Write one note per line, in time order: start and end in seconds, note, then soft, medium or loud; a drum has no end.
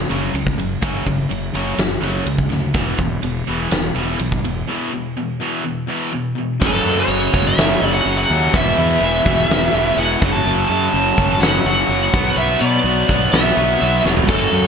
0.09 0.29 F#1 medium
0.09 0.32 F#2 medium
0.09 0.33 C#3 medium
0.09 0.33 F#3 medium
0.09 ride medium
0.34 0.53 C#2 medium
0.34 0.55 F#2 medium
0.34 0.56 C#3 medium
0.34 ride medium
0.47 kick medium
0.58 0.77 F#1 medium
0.58 0.80 F#2 medium
0.58 0.80 C#3 medium
0.58 ride medium
0.81 1.01 F#1 medium
0.81 1.04 F#2 medium
0.81 1.05 C#3 medium
0.81 1.05 F#3 medium
0.81 kick loud
0.81 ride medium
1.06 1.25 F#1 medium
1.06 1.28 F#2 medium
1.06 1.28 C#3 medium
1.06 kick medium
1.06 ride medium
1.30 1.50 F#1 medium
1.30 1.52 F#2 medium
1.30 1.52 C#3 medium
1.30 ride medium
1.54 1.73 F#1 medium
1.54 1.77 F#2 medium
1.54 1.77 C#3 medium
1.54 1.78 F#3 medium
1.54 ride medium
1.78 1.97 F#1 medium
1.78 2.01 F#2 medium
1.78 2.01 C#3 medium
1.78 snare loud
1.78 ride loud
2.01 2.21 F#1 medium
2.01 2.26 F#2 medium
2.01 2.26 C#3 medium
2.01 2.26 F#3 medium
2.01 ride medium
2.26 2.45 C#2 medium
2.26 2.49 F#2 medium
2.26 2.49 C#3 medium
2.26 ride medium
2.38 kick medium
2.49 2.69 D2 medium
2.49 2.73 F#2 medium
2.49 2.73 C#3 medium
2.49 snare soft
2.49 ride medium
2.74 2.94 E1 loud
2.74 2.98 E2 medium
2.74 2.98 B2 medium
2.74 2.98 E3 medium
2.74 kick loud
2.74 ride medium
2.98 3.18 E1 medium
2.98 3.21 E2 medium
2.98 3.21 B2 medium
2.98 kick medium
2.98 ride medium
3.23 3.42 E1 medium
3.23 3.45 E2 medium
3.23 3.45 B2 medium
3.23 ride medium
3.47 3.67 E1 medium
3.47 3.70 E2 medium
3.47 3.71 B2 medium
3.47 3.71 E3 loud
3.47 ride medium
3.71 3.91 E1 medium
3.71 3.94 E2 medium
3.71 3.94 B2 medium
3.71 snare loud
3.71 ride medium
3.95 4.15 E1 medium
3.95 4.19 E2 medium
3.95 4.19 B2 medium
3.95 4.20 E3 medium
3.95 ride medium
4.19 4.39 B1 medium
4.19 4.42 E2 medium
4.19 4.42 B2 medium
4.19 ride medium
4.32 kick medium
4.43 4.63 E1 medium
4.43 4.66 E2 medium
4.43 4.66 B2 medium
4.43 ride medium
4.69 4.91 E2 medium
4.69 4.91 B2 medium
4.69 4.92 E3 loud
4.93 5.14 E2 medium
4.93 5.15 B2 medium
5.17 5.39 E2 medium
5.17 5.39 B2 medium
5.40 5.63 E2 medium
5.40 5.63 B2 medium
5.40 5.64 E3 medium
5.64 5.86 E2 medium
5.64 5.86 B2 medium
5.87 6.11 E2 medium
5.87 6.11 B2 medium
5.87 6.11 E3 medium
6.12 6.34 E2 medium
6.12 6.34 B2 medium
6.35 6.58 E2 medium
6.35 6.58 B2 medium
6.60 6.80 F#1 medium
6.60 6.82 F#2 loud
6.60 6.83 C#3 medium
6.60 6.84 F#3 loud
6.60 kick loud
6.60 crash loud
6.66 7.01 A4 medium
6.84 7.07 F#2 medium
6.84 7.03 F#2 medium
6.84 7.07 C#3 medium
6.84 7.08 F#3 loud
6.99 7.48 C#5 medium
7.08 7.27 F#1 medium
7.08 7.31 F#2 medium
7.08 7.31 C#3 medium
7.08 7.32 F#3 loud
7.08 open hi-hat medium
7.32 7.52 F#1 medium
7.32 7.54 F#2 medium
7.32 7.56 C#3 medium
7.32 7.56 F#3 loud
7.32 kick medium
7.47 7.93 E5 medium
7.56 7.76 F#1 medium
7.56 7.79 F#2 medium
7.56 7.80 C#3 loud
7.56 7.80 F#3 loud
7.56 snare loud
7.56 open hi-hat medium
7.80 8.00 F#1 medium
7.80 8.03 F#2 medium
7.80 8.04 C#3 medium
7.80 8.05 F#3 medium
7.94 8.17 F#5 medium
8.05 8.24 F#1 medium
8.05 8.28 F#2 medium
8.05 8.29 C#3 medium
8.05 8.29 F#3 medium
8.05 open hi-hat medium
8.18 8.55 F#5 loud
8.29 8.48 D#2 loud
8.29 8.52 F#2 medium
8.29 8.52 C#3 medium
8.29 8.52 F#3 medium
8.53 8.72 E1 loud
8.53 8.77 E2 loud
8.53 8.77 B2 loud
8.53 8.78 E3 loud
8.53 9.98 E5 loud
8.53 kick loud
8.53 open hi-hat medium
8.78 8.96 E2 medium
8.78 9.01 E2 medium
8.78 9.02 B2 loud
8.78 9.02 E3 loud
9.01 9.20 E1 loud
9.01 9.25 E2 medium
9.01 9.26 B2 medium
9.01 9.26 E3 medium
9.01 open hi-hat medium
9.26 9.44 E1 medium
9.26 9.49 E2 medium
9.26 9.49 B2 medium
9.26 9.50 E3 loud
9.26 kick medium
9.49 9.67 E1 loud
9.49 9.72 E2 loud
9.49 9.73 B2 medium
9.49 9.73 E3 loud
9.49 snare loud
9.49 open hi-hat medium
9.73 9.91 E1 loud
9.73 9.96 E2 medium
9.73 9.97 B2 loud
9.73 9.98 E3 medium
9.97 10.15 E1 medium
9.97 10.20 E2 medium
9.97 10.20 B2 medium
9.97 10.21 E3 medium
9.97 10.32 F#5 loud
9.97 open hi-hat medium
10.21 10.40 F#1 loud
10.21 10.44 F#2 medium
10.21 10.45 C#3 loud
10.21 10.46 F#3 loud
10.21 kick loud
10.32 10.67 A5 loud
10.45 10.63 F#1 medium
10.45 10.68 F#2 loud
10.45 10.69 C#3 loud
10.45 10.70 F#3 loud
10.45 open hi-hat medium
10.68 10.92 F#2 medium
10.68 10.88 F#2 medium
10.68 10.92 C#3 loud
10.68 10.94 F#3 loud
10.68 11.43 A5 loud
10.93 11.12 F#1 loud
10.93 11.16 F#2 medium
10.93 11.17 C#3 medium
10.93 11.19 F#3 loud
10.93 open hi-hat medium
11.18 11.36 F#1 medium
11.18 11.39 F#2 loud
11.18 11.40 C#3 medium
11.18 11.42 F#3 loud
11.18 kick medium
11.40 11.58 F#1 loud
11.40 11.64 F#2 loud
11.40 11.65 C#3 loud
11.40 11.66 F#3 loud
11.40 11.65 F#5 loud
11.40 snare loud
11.40 open hi-hat medium
11.64 11.83 F#1 medium
11.64 11.87 F#2 medium
11.64 11.88 C#3 medium
11.64 11.89 F#3 medium
11.64 12.37 F#5 loud
11.69 12.14 F#2 medium
11.88 12.07 F#1 medium
11.88 12.11 F#2 medium
11.88 12.12 C#3 medium
11.88 12.13 F#3 medium
11.88 open hi-hat medium
12.13 12.32 B1 loud
12.13 12.36 B2 loud
12.13 12.38 F#3 medium
12.13 12.37 B3 loud
12.13 kick loud
12.37 12.55 B1 loud
12.37 12.59 B2 medium
12.37 12.61 F#3 loud
12.37 12.61 B3 loud
12.37 12.62 E5 medium
12.37 open hi-hat medium
12.60 12.83 B2 medium
12.60 12.79 B2 medium
12.60 12.85 F#3 loud
12.60 12.85 B3 medium
12.60 13.35 D5 loud
12.84 13.02 B1 medium
12.84 13.08 B2 medium
12.84 13.09 F#3 medium
12.84 13.09 B3 medium
12.84 open hi-hat medium
13.09 13.27 B1 medium
13.09 13.31 B2 medium
13.09 13.31 F#3 loud
13.09 13.32 B3 loud
13.09 kick medium
13.32 13.51 B1 loud
13.32 13.55 B2 loud
13.32 13.56 F#3 loud
13.32 13.57 B3 medium
13.32 14.00 E5 medium
13.32 snare loud
13.32 open hi-hat medium
13.56 13.75 B1 medium
13.56 13.79 B2 medium
13.56 13.80 F#3 loud
13.56 13.81 B3 medium
13.81 14.00 B1 medium
13.81 14.02 B2 medium
13.81 14.04 F#3 medium
13.81 14.04 B3 medium
13.81 open hi-hat medium
14.04 14.23 E1 medium
14.04 14.27 B2 medium
14.04 14.27 F#3 medium
14.04 14.27 B3 medium
14.04 snare medium
14.17 floor tom medium
14.28 14.47 F#1 medium
14.28 14.51 F#2 loud
14.28 14.52 C#3 loud
14.28 14.53 F#3 loud
14.28 14.65 A4 medium
14.28 kick loud
14.28 crash loud
14.52 14.67 F#2 medium
14.52 14.67 C#3 medium
14.52 14.67 F#3 loud